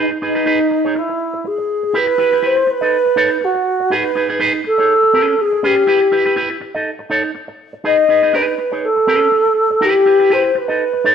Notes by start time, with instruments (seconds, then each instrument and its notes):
Already playing: clean electric guitar D#4 G#4
0.11 muted clean electric guitar stroke
0.22 clean electric guitar D#4 G#4 B4, alto flute D#4
0.35 clean electric guitar D#4 G#4 B4
0.46 clean electric guitar D#4 G#4 B4
0.60 muted clean electric guitar stroke
0.71 muted clean electric guitar stroke
0.85 clean electric guitar D#4 G#4 C#5
0.95 alto flute E4, muted clean electric guitar stroke
1.09 muted clean electric guitar stroke
1.34 muted clean electric guitar stroke
1.44 alto flute G#4, muted clean electric guitar stroke
1.58 muted clean electric guitar stroke
1.83 muted clean electric guitar stroke
1.94 clean electric guitar E4 G4 B4, alto flute B4
2.07 muted clean electric guitar stroke
2.18 clean electric guitar E4 G4 B4
2.32 clean electric guitar E4 G4 B4
2.43 clean electric guitar E4 G4 B4, alto flute C5
2.57 muted clean electric guitar stroke
2.67 alto flute B4, muted clean electric guitar stroke
2.81 clean electric guitar D#4 A4 D#5
3.06 muted clean electric guitar stroke
3.16 clean electric guitar D#4 A4 C#5
3.30 muted clean electric guitar stroke
3.41 alto flute F#4, muted clean electric guitar stroke
3.55 muted clean electric guitar stroke
3.80 muted clean electric guitar stroke
3.90 clean electric guitar D#4 G#4 B4, alto flute B4
4.05 muted clean electric guitar stroke
4.15 clean electric guitar D#4 G#4 B4
4.29 clean electric guitar D#4 G#4 B4
4.40 clean electric guitar D#4 G#4 B4
4.53 muted clean electric guitar stroke
4.64 alto flute A4, muted clean electric guitar stroke
4.78 clean electric guitar D#4 G#4 C#5
5.03 muted clean electric guitar stroke
5.13 clean electric guitar C#4 G#4 B4
5.27 muted clean electric guitar stroke
5.39 alto flute G#4, muted clean electric guitar stroke
5.53 muted clean electric guitar stroke
5.63 clean electric guitar C#4 G#4 B4, alto flute G4
5.76 muted clean electric guitar stroke
5.87 clean electric guitar E4 G4 B4
6.01 muted clean electric guitar stroke
6.12 clean electric guitar E4 G4 B4
6.26 clean electric guitar E4 G4 B4
6.36 clean electric guitar E4 G4 B4
6.50 muted clean electric guitar stroke
6.61 muted clean electric guitar stroke
6.75 clean electric guitar D#4 A4 D#5
6.99 muted clean electric guitar stroke
7.10 clean electric guitar D#4 A4 C#5
7.24 muted clean electric guitar stroke
7.35 muted clean electric guitar stroke
7.48 muted clean electric guitar stroke
7.73 muted clean electric guitar stroke
7.84 clean electric guitar D#4 G#4 B4, alto flute D#5
7.98 muted clean electric guitar stroke
8.09 clean electric guitar D#4 G#4 B4
8.23 clean electric guitar D#4 G#4 B4
8.33 clean electric guitar D#4 G#4 B4, alto flute B4
8.48 muted clean electric guitar stroke
8.58 muted clean electric guitar stroke
8.72 clean electric guitar D#4 G#4 C#5
8.84 alto flute A4
8.96 muted clean electric guitar stroke
9.07 clean electric guitar C#4 G#4 B4
9.21 muted clean electric guitar stroke
9.32 muted clean electric guitar stroke
9.46 muted clean electric guitar stroke
9.70 muted clean electric guitar stroke
9.81 clean electric guitar E4 G4 B4, alto flute G4
9.95 muted clean electric guitar stroke
10.06 clean electric guitar E4 G4 B4
10.20 clean electric guitar E4 G4 B4
10.30 clean electric guitar E4 G4 B4, alto flute C5
10.44 muted clean electric guitar stroke
10.55 alto flute B4, muted clean electric guitar stroke
10.68 clean electric guitar D#4 A4 D#5
10.93 muted clean electric guitar stroke
11.04 clean electric guitar D#4 A4 C#5